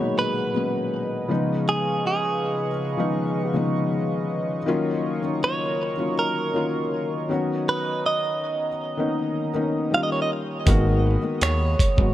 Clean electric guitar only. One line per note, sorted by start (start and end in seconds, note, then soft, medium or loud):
0.00 0.18 C#5 medium
0.19 1.64 B4 medium
1.69 2.06 G#4 medium
2.07 3.49 G#4 medium
3.49 4.27 F#4 medium
5.44 6.14 C#5 medium
6.19 7.69 A#4 medium
7.69 8.06 B4 medium
8.06 9.90 D#5 medium
9.94 10.03 F5 medium
10.03 10.12 D#5 medium
10.12 10.21 C#5 medium
10.22 10.30 D#5 medium
11.43 12.14 C#5 medium